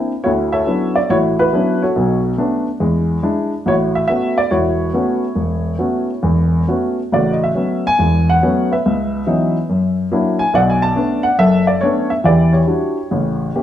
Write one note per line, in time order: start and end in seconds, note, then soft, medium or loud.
0.00 0.11 A#3 soft
0.00 0.11 C4 soft
0.00 0.11 D4 soft
0.00 0.12 E4 medium
0.24 0.62 D2 medium
0.24 0.66 E4 medium
0.24 1.06 F#4 medium
0.24 0.30 C#5 medium
0.52 1.35 A4 medium
0.52 1.09 C#5 medium
0.52 0.97 E5 medium
0.67 0.97 F#3 soft
0.67 0.97 B3 soft
0.67 0.97 C#4 soft
0.67 0.97 D4 soft
0.67 0.97 E4 soft
0.96 1.09 D5 medium
1.10 1.47 A1 soft
1.10 1.38 E4 medium
1.10 1.38 F#4 medium
1.10 1.17 C#5 medium
1.39 1.53 E4 soft
1.39 1.82 F#4 medium
1.39 1.83 B4 medium
1.53 1.82 F#3 medium
1.53 1.83 B3 soft
1.53 1.83 C#4 soft
1.53 1.83 D4 soft
1.53 1.83 E4 medium
1.82 2.63 F#4 soft
1.82 2.62 A4 soft
1.82 2.21 C#5 medium
1.96 2.32 B1 medium
1.96 2.32 B2 medium
2.38 2.67 A3 soft
2.38 2.67 B3 soft
2.38 2.67 C#4 soft
2.38 2.67 D4 medium
2.80 3.17 E2 medium
2.80 3.17 G#3 medium
3.23 3.52 G#3 medium
3.23 3.52 D4 soft
3.23 3.52 E4 medium
3.66 4.03 A1 medium
3.66 4.48 E4 medium
3.66 4.08 F#4 medium
3.66 3.74 C#5 medium
3.95 4.06 E5 medium
4.08 4.38 A3 soft
4.08 4.38 B3 soft
4.08 4.39 C#4 soft
4.08 4.39 F#4 medium
4.08 4.37 E5 medium
4.38 4.52 D5 medium
4.51 4.88 E1 medium
4.51 6.64 E4 medium
4.51 4.93 F#4 medium
4.51 6.63 C#5 medium
4.93 5.24 A3 medium
4.93 5.23 B3 soft
4.93 5.24 C#4 soft
4.93 5.24 F#4 medium
5.35 5.73 E1 medium
5.79 6.09 A3 soft
5.79 6.09 B3 soft
5.79 6.09 C#4 soft
5.79 6.09 F#4 soft
6.23 6.62 E1 medium
6.23 6.61 E2 medium
6.67 6.98 A3 soft
6.67 6.98 B3 soft
6.67 6.99 C#4 soft
6.67 6.99 F#4 medium
7.12 7.50 A1 medium
7.12 7.50 C#3 medium
7.12 7.96 F#4 medium
7.12 7.33 D5 medium
7.32 7.41 D#5 medium
7.44 7.83 E5 medium
7.55 7.85 F#3 soft
7.55 7.85 A3 soft
7.55 7.85 B3 soft
7.55 7.85 C#4 soft
7.87 8.30 G#5 loud
7.99 8.36 E1 medium
7.99 8.37 E2 soft
8.30 8.68 F#5 medium
8.42 8.72 F#3 soft
8.42 8.72 A3 soft
8.42 8.72 B3 soft
8.42 8.72 C#4 medium
8.72 9.66 B4 soft
8.72 9.94 E5 medium
8.86 9.22 C#2 medium
9.26 9.56 E3 soft
9.26 9.56 F#3 soft
9.26 9.56 B3 soft
9.26 9.56 C#4 soft
9.26 9.56 D#4 medium
9.69 10.06 F#2 medium
10.11 10.41 F#3 medium
10.11 10.41 A#3 medium
10.11 10.42 D4 soft
10.11 10.42 E4 medium
10.39 10.53 G#5 medium
10.54 10.90 B1 medium
10.54 10.90 B2 medium
10.54 11.35 D5 medium
10.54 10.60 F#5 medium
10.70 10.80 G#5 medium
10.82 11.21 A5 medium
10.96 11.25 A3 soft
10.96 11.25 B3 soft
10.96 11.25 C#4 soft
10.96 11.26 D4 medium
11.23 11.39 F#5 medium
11.39 11.75 F#1 medium
11.39 11.75 F#2 medium
11.39 12.20 A4 medium
11.39 11.65 E5 loud
11.67 11.82 D5 medium
11.81 12.11 A3 medium
11.81 12.12 B3 medium
11.81 12.12 C#4 medium
11.81 12.12 D4 medium
11.81 12.10 C#5 medium
12.10 12.23 E5 medium
12.24 12.61 E2 medium
12.24 12.61 E3 medium
12.24 12.52 G4 medium
12.24 12.54 D5 medium
12.53 13.54 G4 soft
12.53 13.63 C#5 medium
12.67 12.97 G3 soft
12.67 12.97 D4 soft
12.67 12.97 E4 soft
12.67 12.98 F#4 soft
13.11 13.49 A1 medium
13.11 13.49 C#3 medium
13.55 13.63 A3 soft
13.55 13.63 A#3 soft
13.55 13.63 C#4 soft
13.55 13.63 G4 medium